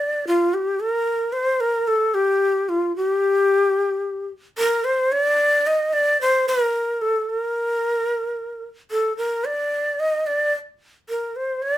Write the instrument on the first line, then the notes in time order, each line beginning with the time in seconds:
shakuhachi
Already playing: D5
0.27 F4
0.54 G4
0.80 A#4
1.33 C5
1.60 A#4
1.87 A4
2.14 G4
2.69 F4
2.96 G4
4.58 A#4
4.84 C5
5.12 D5
5.67 D#5
5.93 D5
6.21 C5
6.48 A#4
7.02 A4
7.29 A#4
8.91 A4
9.17 A#4
9.45 D5
10.00 D#5
10.26 D5
11.09 A#4
11.36 C5
11.63 C#5
11.74 D5